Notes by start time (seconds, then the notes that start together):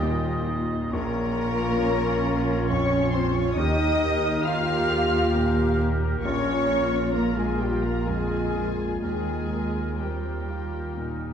Already playing: D#2 G3 A#3 D#4 F4 G4 A#4 D#5 G5
0.03 A#2
0.48 D#4
0.92 A#1 A#3 C#4 F4 A#4 C#5 A#5
1.38 A#4
1.82 C#4
2.26 F4
2.69 F2 C#4 C#5 C#6
3.13 C4 C#4 C5 C6
3.35 C#4 C#5 C#6
3.57 D#2 A#3 D#4 G4 A#4 D#5 D#6
4.02 A#4
4.45 A#3 F4 F5 F6
4.91 G4
5.36 A#2
5.79 A#3
6.24 A#1 C#4 F4 C#5 C#6
6.69 A#4
7.14 A#3 A#4 A#5
7.37 G#3 G#4 G#5
7.60 G3 F4 G4 G5
7.83 A#3 A#4 A#5
8.06 F2 G#3 G#4 G#5
8.55 A#3
9.03 D#2 G#3 A#3 G#4 A#4 G#5
9.53 A#4
10.00 G3 A#3 C4 G4 G5
10.48 A#3 F4
10.96 A#2 D#4